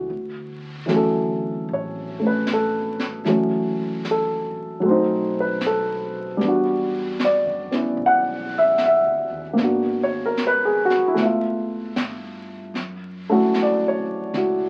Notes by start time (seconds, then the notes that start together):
Already playing: E3 G3 F#4
0.10 D2, brush sweep
0.86 E3 F#3 A3, snare, hi-hat pedal
0.91 C#4
0.96 A4
1.69 A1, brush sweep
1.73 C#5
2.19 A3 C#4
2.27 B4
2.47 snare, hi-hat pedal
2.53 A4
2.99 snare
3.25 F#1 E3 F#3 A3, brush sweep, snare
3.29 C#4
4.05 snare, hi-hat pedal
4.11 A4
4.57 muted upright bass stroke
4.80 B1 F#3 A3, brush sweep
4.86 C4 C5
4.91 D#4
5.40 B4
5.61 snare, hi-hat pedal
5.66 A4
6.37 E2 G3 B3
6.41 D4, brush sweep, snare
6.48 F#4
7.20 snare, hi-hat pedal
7.25 D5
7.45 F#2
7.71 D2 B3 C#4 E4, snare
7.97 B1, brush sweep
8.06 F#5
8.58 E5
8.78 snare, hi-hat pedal
8.85 E5
9.03 D2
9.30 D#2
9.53 G#1 A#3 B3
9.58 D4, brush sweep, snare
9.64 F#4
10.03 C#5
10.26 A#4
10.37 snare, hi-hat pedal
10.47 B4
10.65 G#4
10.85 F#4
10.90 snare
11.08 E4
11.14 C#2 A3, brush sweep, snare
11.18 B3 E5
11.25 F4
11.96 G2, snare, hi-hat pedal
12.74 F#2, brush sweep, snare
13.29 A3 C#4 E4 F#4
13.54 snare, hi-hat pedal
13.62 D5
13.88 C#5
14.34 C#2 E4 F#4, brush sweep, snare